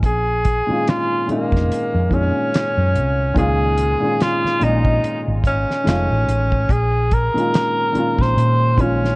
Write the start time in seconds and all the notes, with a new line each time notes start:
0.03 A#1 G#4, kick, closed hi-hat
0.44 kick, closed hi-hat
0.67 A#2 D#3 G#3 C#4, muted fingered electric bass stroke
0.72 F4
0.87 F4, snare, clap, closed hi-hat
1.26 A#2 D#3 G#3 C#4, muted fingered electric bass stroke, closed hi-hat
1.31 A#3 D#4
1.52 F1, kick, snare
1.70 muted fingered electric bass stroke, closed hi-hat
1.94 F2
2.09 A#2 D#3 G#3 C#4, kick, closed hi-hat
2.14 C#4 G#4
2.54 snare, clap, closed hi-hat
2.77 F#2
2.95 C2, closed hi-hat
3.34 C#2 A#2 D#3 G#3 C#4, kick, closed hi-hat
3.38 F4 G#4
3.78 closed hi-hat
4.00 A#2 D#3 G#3 C#4, muted fingered electric bass stroke
4.05 F4
4.21 F4, snare, clap, closed hi-hat
4.45 muted fingered electric bass stroke, snare
4.59 A#1 A#2 D#3 G#3 C#4, closed hi-hat
4.64 D#4
4.85 kick
5.04 closed hi-hat
5.28 G#1
5.44 C#4, kick, closed hi-hat
5.71 snare
5.84 F1 D#3 G#3 A3 C#4, closed hi-hat
5.89 F4, snare, clap
6.11 A1
6.28 A1, closed hi-hat
6.52 kick
6.69 A#1 G#4, kick, closed hi-hat
7.11 A#4, kick, closed hi-hat
7.34 A#2 D#3 G#3 C#4, muted fingered electric bass stroke, closed hi-hat
7.39 F4
7.54 snare, clap, closed hi-hat
7.93 A#2 D#3 G#3 C#4, muted fingered electric bass stroke, closed hi-hat
7.98 F4
8.19 A#1 C5, kick, snare
8.36 A#2, closed hi-hat
8.76 A#1 A#2 D#3 G#3, kick, closed hi-hat
8.80 C#4 F4
9.05 snare